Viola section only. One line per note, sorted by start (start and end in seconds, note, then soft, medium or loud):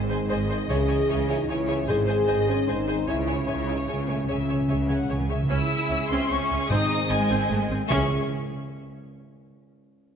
0.09 0.17 G#4 soft
0.09 0.17 C5 soft
0.29 0.37 G#4 soft
0.29 0.37 C5 medium
0.49 0.57 G#4 medium
0.49 0.57 C5 soft
0.69 0.77 G#4 soft
0.69 0.77 C#5 medium
0.88 0.96 G#4 soft
0.88 0.96 C#5 soft
1.09 1.17 G#4 medium
1.09 1.17 C#5 soft
1.29 1.37 G#4 soft
1.29 1.37 C#5 soft
1.49 1.57 G#4 medium
1.49 1.57 C#5 medium
1.68 1.76 G#4 medium
1.68 1.76 C#5 medium
1.87 1.95 G#4 soft
1.87 1.95 C5 medium
2.07 2.16 G#4 soft
2.07 2.15 C5 soft
2.27 2.36 G#4 soft
2.27 2.35 C5 soft
2.48 2.56 G#4 soft
2.48 2.56 C5 soft
2.67 2.75 G#4 soft
2.67 2.75 C5 medium
2.87 2.95 G#4 medium
2.87 2.95 C5 soft
3.07 3.15 G#4 soft
3.07 3.15 C#5 medium
3.27 3.35 G#4 soft
3.27 3.35 C#5 soft
3.47 3.55 G#4 soft
3.47 3.55 C#5 soft
3.67 3.76 G#4 soft
3.67 3.75 C#5 soft
3.88 3.96 G#4 soft
3.88 3.96 C#5 soft
4.08 4.16 G#4 soft
4.08 4.16 C#5 soft
4.28 4.37 G#4 soft
4.28 4.36 C#5 soft
4.49 4.57 G#4 soft
4.49 4.57 C#5 soft
4.70 4.78 G#4 soft
4.70 4.78 C#5 soft
4.88 4.96 G#4 soft
4.88 4.96 C#5 soft
5.09 5.17 G#4 soft
5.09 5.17 C#5 soft
5.28 5.36 G#4 soft
5.28 5.37 C#5 soft
5.49 5.69 C#4 medium
5.49 7.65 G#4 soft
5.91 5.99 C#4 medium
6.11 6.29 C#4 medium
6.30 6.38 C4 medium
6.50 6.58 C#4 medium
6.70 6.88 C4 medium
7.09 7.17 C4 medium
7.29 7.48 C4 medium
7.49 7.57 A3 medium
7.71 7.79 C4 medium
7.90 8.13 C#4 medium
7.90 8.13 G#4 medium